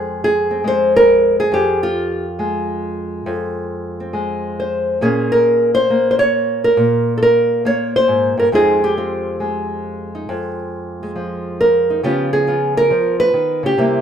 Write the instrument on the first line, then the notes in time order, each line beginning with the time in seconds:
nylon-string guitar
Already playing: F2 G#3 C4 G#4
0.24 G#4
0.51 C4
0.64 G#3 C5
0.96 A#4
1.40 G#4
1.52 F2 G4
1.83 F4
2.39 G#3
3.26 F2
4.00 C4
4.13 G#3
4.60 C5
5.01 A#2 A#3 C#4 G#4
5.32 A#4
5.75 C5
5.90 A#3
6.11 C5
6.19 C#5
6.64 A#4
6.77 A#2
7.18 A4
7.23 A#4
7.65 A#3 C#5
7.96 C5
8.08 G#2
8.37 G2 A#4
8.52 F2 G#3 C4 D#4 G#4
8.84 G4
8.97 C4 F4
9.40 G#3
10.15 D#4
10.29 F2
11.03 G#3
11.15 F3
11.61 A#4
11.90 D#4
12.03 C#3 F3 B3 F4 G4
12.33 G#4
12.47 B3 F4
12.77 A#4
12.90 F3
13.20 B4
13.34 D#3
13.63 C#3 G4
13.78 C3 G3 A#3 E4